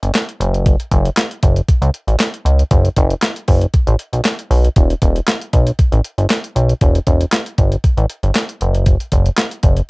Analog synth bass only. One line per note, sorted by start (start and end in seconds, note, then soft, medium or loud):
0.03 0.11 G1 medium
0.40 0.76 F#1 loud
0.91 1.10 F#1 loud
1.43 1.61 F#1 medium
1.82 1.90 C#2 loud
2.07 2.16 A1 medium
2.45 2.63 C#2 medium
2.71 2.89 F#1 loud
2.97 3.15 F#1 loud
3.48 3.66 F#1 medium
3.87 3.96 A1 loud
4.13 4.21 B1 medium
4.51 4.69 B1 loud
4.76 4.94 E1 loud
5.02 5.20 E1 loud
5.53 5.71 B1 medium
5.92 6.01 A1 medium
6.18 6.26 G1 medium
6.55 6.74 B1 loud
6.81 6.99 E1 loud
7.07 7.25 E1 loud
7.58 7.76 G1 medium
7.97 8.06 A1 loud
8.23 8.32 G1 medium
8.61 8.97 F#1 loud
9.12 9.30 F#1 loud
9.63 9.81 F#1 medium